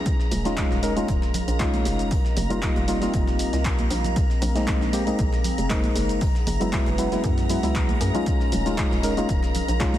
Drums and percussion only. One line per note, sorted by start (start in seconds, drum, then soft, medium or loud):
0.06 kick loud
0.06 closed hi-hat medium
0.06 shaker soft
0.20 snare soft
0.20 shaker soft
0.31 closed hi-hat medium
0.31 open hi-hat loud
0.31 high conga loud
0.31 low conga medium
0.31 shaker medium
0.45 snare soft
0.45 closed hi-hat medium
0.45 shaker soft
0.57 kick loud
0.57 snare loud
0.57 clap loud
0.57 closed hi-hat medium
0.57 shaker soft
0.71 snare soft
0.71 shaker soft
0.83 closed hi-hat medium
0.83 open hi-hat loud
0.83 shaker medium
0.97 closed hi-hat medium
0.97 high conga medium
0.97 shaker soft
1.08 kick loud
1.08 closed hi-hat medium
1.08 shaker soft
1.22 snare medium
1.22 shaker soft
1.34 closed hi-hat medium
1.34 open hi-hat loud
1.34 low conga medium
1.34 shaker medium
1.48 closed hi-hat soft
1.48 closed hi-hat medium
1.48 shaker soft
1.60 kick loud
1.60 snare loud
1.60 clap loud
1.60 closed hi-hat medium
1.60 shaker soft
1.73 closed hi-hat soft
1.73 muted conga soft
1.73 high conga medium
1.73 shaker soft
1.85 closed hi-hat medium
1.85 open hi-hat loud
1.85 muted conga medium
1.85 shaker medium
1.99 closed hi-hat medium
1.99 shaker soft
2.11 kick loud
2.11 closed hi-hat medium
2.11 open hi-hat medium
2.11 muted conga medium
2.11 shaker soft
2.25 snare soft
2.25 shaker soft
2.36 closed hi-hat medium
2.36 open hi-hat loud
2.36 muted conga medium
2.36 high conga loud
2.36 low conga medium
2.36 shaker medium
2.50 closed hi-hat medium
2.50 shaker soft
2.62 kick loud
2.62 snare loud
2.62 clap loud
2.62 closed hi-hat medium
2.62 shaker soft
2.76 closed hi-hat soft
2.76 shaker soft
2.88 closed hi-hat medium
2.88 open hi-hat loud
2.88 shaker medium
3.01 snare soft
3.01 closed hi-hat medium
3.01 high conga medium
3.01 shaker soft
3.14 kick loud
3.14 closed hi-hat medium
3.14 shaker soft
3.27 snare medium
3.27 shaker soft
3.39 closed hi-hat medium
3.39 open hi-hat loud
3.39 shaker medium
3.53 snare soft
3.53 closed hi-hat medium
3.53 shaker soft
3.65 kick loud
3.65 snare loud
3.65 clap loud
3.65 closed hi-hat medium
3.65 shaker soft
3.79 closed hi-hat soft
3.79 high conga medium
3.79 shaker soft
3.90 closed hi-hat medium
3.90 open hi-hat loud
3.90 shaker medium
4.04 closed hi-hat medium
4.04 low conga medium
4.04 shaker soft
4.16 kick loud
4.16 closed hi-hat medium
4.16 shaker soft
4.30 snare soft
4.30 shaker soft
4.42 closed hi-hat medium
4.42 open hi-hat loud
4.42 high conga medium
4.42 low conga medium
4.42 shaker medium
4.56 snare soft
4.56 closed hi-hat medium
4.56 shaker soft
4.67 kick loud
4.67 snare loud
4.67 clap loud
4.67 closed hi-hat medium
4.67 shaker soft
4.81 snare soft
4.81 shaker soft
4.93 closed hi-hat medium
4.93 open hi-hat loud
4.93 shaker medium
5.07 closed hi-hat soft
5.07 high conga medium
5.07 shaker soft
5.19 kick loud
5.19 closed hi-hat medium
5.19 shaker soft
5.33 snare medium
5.33 shaker soft
5.44 closed hi-hat medium
5.44 open hi-hat loud
5.44 low conga medium
5.44 shaker medium
5.58 closed hi-hat medium
5.58 closed hi-hat soft
5.58 shaker soft
5.70 kick loud
5.70 snare loud
5.70 clap loud
5.70 closed hi-hat medium
5.70 shaker soft
5.84 closed hi-hat soft
5.84 muted conga soft
5.84 high conga loud
5.84 shaker soft
5.96 closed hi-hat medium
5.96 open hi-hat loud
5.96 muted conga medium
5.96 shaker medium
6.09 closed hi-hat medium
6.09 shaker soft
6.21 kick loud
6.21 closed hi-hat medium
6.21 open hi-hat medium
6.21 muted conga soft
6.21 shaker soft
6.35 snare soft
6.35 shaker soft
6.47 closed hi-hat medium
6.47 open hi-hat loud
6.47 muted conga medium
6.47 high conga loud
6.47 low conga medium
6.47 shaker medium
6.61 closed hi-hat medium
6.61 shaker soft
6.73 kick loud
6.73 snare loud
6.73 clap loud
6.73 closed hi-hat medium
6.73 shaker soft
6.86 closed hi-hat soft
6.86 shaker soft
6.98 closed hi-hat medium
6.98 open hi-hat loud
6.98 shaker medium
7.12 snare soft
7.12 closed hi-hat soft
7.12 high conga medium
7.12 shaker soft
7.24 kick loud
7.24 closed hi-hat medium
7.24 shaker soft
7.38 snare medium
7.38 closed hi-hat soft
7.38 shaker soft
7.49 closed hi-hat medium
7.49 open hi-hat loud
7.49 shaker medium
7.63 snare soft
7.63 open hi-hat medium
7.63 muted conga soft
7.63 shaker soft
7.75 kick loud
7.75 snare loud
7.75 clap loud
7.75 closed hi-hat medium
7.75 shaker soft
7.89 closed hi-hat soft
7.89 high conga medium
7.89 shaker soft
8.01 closed hi-hat medium
8.01 open hi-hat loud
8.01 shaker medium
8.15 closed hi-hat medium
8.15 low conga medium
8.15 shaker soft
8.26 kick loud
8.26 closed hi-hat medium
8.26 shaker soft
8.40 snare soft
8.40 shaker soft
8.52 closed hi-hat medium
8.52 open hi-hat loud
8.52 high conga medium
8.52 low conga medium
8.52 shaker medium
8.66 snare soft
8.66 closed hi-hat medium
8.66 shaker soft
8.78 kick loud
8.78 snare loud
8.78 clap loud
8.78 closed hi-hat medium
8.78 shaker soft
8.91 snare soft
8.91 shaker soft
9.03 closed hi-hat medium
9.03 open hi-hat loud
9.03 shaker medium
9.17 closed hi-hat soft
9.17 high conga medium
9.17 shaker soft
9.29 kick loud
9.29 closed hi-hat medium
9.29 shaker soft
9.43 snare medium
9.43 shaker soft
9.55 closed hi-hat medium
9.55 open hi-hat loud
9.55 low conga medium
9.55 shaker medium
9.68 closed hi-hat soft
9.68 closed hi-hat medium
9.68 shaker soft
9.80 kick loud
9.80 snare loud
9.80 clap loud
9.80 closed hi-hat medium
9.80 shaker soft
9.94 closed hi-hat soft
9.94 muted conga soft
9.94 high conga loud
9.94 shaker soft